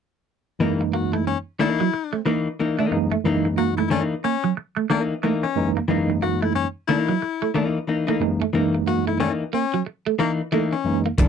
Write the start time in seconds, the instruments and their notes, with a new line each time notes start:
0.59 tine electric piano F#2 E3 G#3 A#3 D#4, hollow-body jazz guitar E3 A#3 D#4
0.81 muted clean electric guitar stroke
0.93 clean electric guitar A#3, baritone saxophone F#4
1.13 clean electric guitar A3, baritone saxophone E4
1.27 baritone saxophone C#4, muted clean electric guitar stroke
1.59 hollow-body jazz guitar E3 A#3 D#4, clean electric guitar A#3, baritone saxophone E4
1.80 clean electric guitar F#3
1.94 muted clean electric guitar stroke
2.13 clean electric guitar A3
2.26 hollow-body jazz guitar E3 A#3 D#4, clean electric guitar A#3
2.59 hollow-body jazz guitar E3 A#3 D#4
2.79 hollow-body jazz guitar E3 A#3 D#4, clean electric guitar A3
2.91 tine electric piano F#2 E3 G#3 A#3 D#4, muted clean electric guitar stroke
3.12 clean electric guitar A3
3.24 tine electric piano F#2 E3 G#3 A#3 D#4, hollow-body jazz guitar E3 A#3 D#4
3.45 muted clean electric guitar stroke
3.57 clean electric guitar A#3, baritone saxophone F#4
3.77 clean electric guitar A3, baritone saxophone E4
3.90 hollow-body jazz guitar E3 A#3 D#4, baritone saxophone C#4, muted clean electric guitar stroke
4.24 clean electric guitar A#3, baritone saxophone C#4
4.44 clean electric guitar F#3
4.57 muted clean electric guitar stroke
4.76 clean electric guitar A3
4.90 hollow-body jazz guitar E3 A#3 D#4, clean electric guitar A#3, baritone saxophone A#3
5.23 hollow-body jazz guitar E3 A#3 D#4, clean electric guitar A3
5.43 baritone saxophone C#4, muted clean electric guitar stroke
5.56 tine electric piano F#2 E3 G#3 A#3 D#4
5.77 clean electric guitar A#3
5.88 tine electric piano F#2 E3 G#3 A#3 D#4, hollow-body jazz guitar E3 A#3 D#4
6.10 muted clean electric guitar stroke
6.22 clean electric guitar A#3, baritone saxophone F#4
6.42 clean electric guitar A3, baritone saxophone E4
6.55 baritone saxophone C#4, muted clean electric guitar stroke
6.88 hollow-body jazz guitar E3 A#3 D#4, clean electric guitar A#3, baritone saxophone E4
7.09 clean electric guitar F#3
7.22 muted clean electric guitar stroke
7.42 clean electric guitar A3
7.54 hollow-body jazz guitar E3 A#3 D#4, clean electric guitar A#3
7.87 hollow-body jazz guitar E3 A#3 D#4
8.07 hollow-body jazz guitar E3 A#3 D#4, clean electric guitar A3
8.20 tine electric piano F#2 E3 G#3 A#3 D#4, muted clean electric guitar stroke
8.42 clean electric guitar A3
8.53 tine electric piano F#2 E3 G#3 A#3 D#4, hollow-body jazz guitar E3 A#3 D#4
8.75 muted clean electric guitar stroke
8.87 clean electric guitar A#3, baritone saxophone F#4
9.07 clean electric guitar A3, baritone saxophone E4
9.20 hollow-body jazz guitar E3 A#3 D#4, baritone saxophone C#4, muted clean electric guitar stroke
9.53 clean electric guitar A#3, baritone saxophone C#4
9.74 clean electric guitar F#3
9.86 muted clean electric guitar stroke
10.06 clean electric guitar A3
10.19 hollow-body jazz guitar E3 A#3 D#4, baritone saxophone A#3, clean electric guitar A#3
10.52 hollow-body jazz guitar E3 A#3 D#4, clean electric guitar A3
10.72 baritone saxophone C#4, muted clean electric guitar stroke
10.85 tine electric piano F#2 E3 G#3 A#3 D#4
11.06 clean electric guitar A#3
11.18 slap bass F#1, tine electric piano F#2 E3 G#3 A#3 D#4, hollow-body jazz guitar E3 A#3 D#4, kick, closed hi-hat